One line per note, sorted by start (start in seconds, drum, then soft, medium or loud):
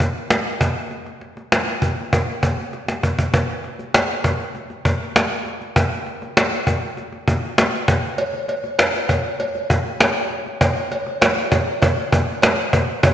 0.00 cajon bass medium
0.15 cajon slap soft
0.30 cajon slap loud
0.45 cajon slap soft
0.61 cajon bass medium
0.76 cajon slap soft
0.91 cajon slap soft
1.06 cajon slap soft
1.21 cajon slap soft
1.37 cajon slap soft
1.52 cajon slap loud
1.67 cajon slap soft
1.82 cajon bass medium
1.97 cajon slap soft
2.13 cajon bass loud
2.28 cajon slap soft
2.43 cajon bass medium
2.58 cajon slap soft
2.73 cajon slap medium
2.88 cajon slap medium
3.03 cajon bass medium
3.19 cajon bass medium
3.34 cajon bass medium
3.49 cajon slap soft
3.64 cajon slap soft
3.79 cajon slap soft
3.94 cajon slap loud
4.09 cajon slap soft
4.24 cajon bass medium
4.40 cajon slap soft
4.55 cajon slap soft
4.70 cajon slap soft
4.85 cajon bass medium
5.01 cajon slap soft
5.16 cajon slap loud
5.31 cajon slap soft
5.46 cajon slap soft
5.61 cajon slap soft
5.76 cajon bass loud
5.92 cajon slap soft
6.06 cajon slap soft
6.22 cajon slap soft
6.37 cajon slap loud
6.52 cajon slap soft
6.67 cajon bass medium
6.82 cajon slap soft
6.97 cajon slap soft
7.12 cajon slap soft
7.28 cajon bass medium
7.43 cajon slap soft
7.58 cajon slap loud
7.73 cajon slap soft
7.88 cajon bass loud
8.03 cajon slap soft
8.18 cajon slap soft
8.18 cowbell medium
8.34 cajon slap soft
8.48 cajon slap soft
8.48 cowbell medium
8.64 cajon slap soft
8.79 cajon slap loud
8.79 cowbell medium
8.94 cajon slap soft
9.09 cajon bass medium
9.09 cowbell medium
9.24 cajon slap soft
9.40 cajon slap soft
9.40 cowbell medium
9.55 cajon slap soft
9.70 cajon bass medium
9.86 cajon slap soft
10.00 cajon slap loud
10.00 cowbell medium
10.15 cajon slap soft
10.30 cajon slap soft
10.46 cajon slap soft
10.61 cajon bass loud
10.61 cowbell medium
10.77 cajon slap soft
10.91 cajon slap soft
10.91 cowbell medium
11.07 cajon slap soft
11.21 cajon slap loud
11.21 cowbell medium
11.37 cajon slap soft
11.52 cajon bass medium
11.52 cowbell medium
11.67 cajon slap soft
11.82 cajon bass loud
11.82 cowbell medium
11.97 cajon slap soft
12.12 cajon bass medium
12.28 cajon slap soft
12.42 cajon slap loud
12.42 cowbell medium
12.58 cajon slap soft
12.73 cajon bass medium
12.89 cajon slap soft
13.03 cajon bass loud
13.03 cowbell medium